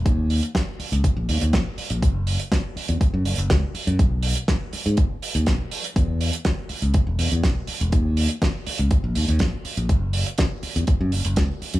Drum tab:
HH |x-oxx-oxx-oxx-ox|x-oxx-oxx-oxx-ox|x-oxx-oxx-oxx-ox|x-oxx-oxx-oxx-ox|
SD |----o-------o---|----o-------o---|----o-------o---|----o-------o---|
BD |o---o---o---o---|o---o---o---o---|o---o---o---o---|o---o---o---o---|

HH |x-oxx-oxx-oxx-ox|x-oxx-oxx-oxx-ox|
SD |----o-------o---|----o-------o---|
BD |o---o---o---o---|o---o---o---o---|